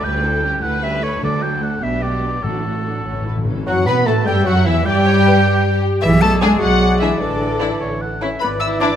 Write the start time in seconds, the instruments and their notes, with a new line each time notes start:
0.03 cello section D2, double bass section D2, viola section G3 C#4, violin section G4 B4, oboe G5
0.22 viola section A3 E4, violin section A4
0.42 viola section G3 C#4, violin section G4
0.61 cello section D2, double bass section D2, viola section A3 E4, violin section A4 B4, oboe F#5
0.81 viola section G3 C#4, violin section G4, oboe E5
1.01 viola section A3 E4, violin section A4, oboe C#5
1.21 cello section D2, double bass section D2, timpani D3, viola section A3 D4, violin section F#4 A4, oboe D5
1.42 viola section F#3 F#4, violin section A4, oboe G5
1.62 viola section A3 D4, violin section F#4, oboe F#5
1.82 double bass section B1, cello section B2, viola section B3 D4, violin section G4 B4, oboe E5
2.02 viola section G3 B3, violin section G4, oboe D5
2.23 viola section B3 D4, violin section B4
2.43 double bass section A1, timpani A2, cello section A2, viola section F#3 D4, violin section F#4 A4, oboe A4
2.64 viola section A3 F#4, violin section F#4
2.87 viola section F#3 D4, violin section A4
3.05 double bass section A1, timpani A2, cello section A2, viola section E3 C#4, violin section C#5
3.13 timpani A2
3.21 timpani A2
3.26 timpani A2, viola section A3 E4, violin section B4
3.37 timpani A2
3.45 timpani A2, viola section E3 C#4, violin section A4
3.53 timpani A2
3.66 double bass section F#2, bassoon F#3, cello section F#3, french horn section F#3, clarinet F#4, violin section F#4 F#5, oboe F#5, flute F#5
3.85 double bass section B2, bassoon B3, cello section B3, french horn section B3, clarinet B4, violin section B4 B5, oboe B5, flute B5
4.06 double bass section A2, bassoon A3, french horn section A3, cello section A3, clarinet A4, violin section A4 A5, oboe A5, flute A5
4.26 double bass section G2, bassoon G3, cello section G3, french horn section G3, violin section G4 G5, clarinet G4, viola section E5, oboe G5, flute G5
4.44 double bass section F#2, bassoon F#3, french horn section F#3, cello section F#3, violin section F#4 F#5, clarinet F#4, oboe F#5, flute F#5
4.65 double bass section E2, bassoon E3, cello section E3, french horn section E3, violin section E4 E5, clarinet E4, oboe E5, flute E5
4.85 double bass section G2, bassoon G3, cello section G3, french horn section G3, violin section G4 G5, clarinet G4, viola section D5, oboe G5, flute G5
5.06 viola section C#5
5.26 viola section B4
5.45 viola section G4
6.02 double bass section B1, cello section E3, bassoon G#3, clarinet E4, viola section G#4, oboe D5, violin section E5, flute E5
6.21 cello section A3, clarinet A4, flute A5, violin section A5
6.40 cello section G#3, french horn section G#3 D4, violin section D4 G#4 G#5, clarinet G#4, flute G#5
6.59 double bass section B1, cello section F#3, clarinet F#4, viola section G#4, flute F#5, violin section F#5
6.99 cello section E3, french horn section G#3 D4, violin section D4 G#4 E5, clarinet E4, flute E5
7.18 double bass section A1, cello section D3, bassoon E3, clarinet D4, viola section A4, flute D5, violin section D5
7.59 french horn section E3 D4, violin section D4 E4
7.80 double bass section A1, oboe C#5
8.01 oboe F#5
8.22 french horn section E3 C#4, violin section C#4 E4, oboe E5
8.41 double bass section G#1, bassoon E3, cello section B3, clarinet B4, oboe D5, flute B5, violin section B5
8.60 cello section E4, clarinet E5, flute E6, violin section E6
8.80 french horn section E3 D4, cello section D4, violin section D4 E4 D6, clarinet D5, flute D6